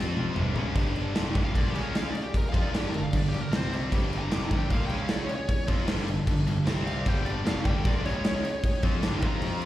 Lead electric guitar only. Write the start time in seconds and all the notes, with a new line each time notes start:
1.44 F5
1.56 D5
1.70 G4
1.83 A#4
1.97 F5
2.11 D5
2.23 G4
2.37 A#4
2.49 F5
2.62 D5
2.76 G4
2.89 A#4
3.03 F5
3.17 D5
3.28 G4
3.41 A#4
3.56 C5
4.18 A#5
4.33 D6
4.45 A#5
4.57 G5
4.71 F5
4.86 G5
4.98 F5
5.11 D5
5.25 C#5
5.35 C#5
6.87 F5
7.08 G5
7.25 D5
7.46 F5
7.66 G5
7.87 D5
8.06 C#5
9.26 A#5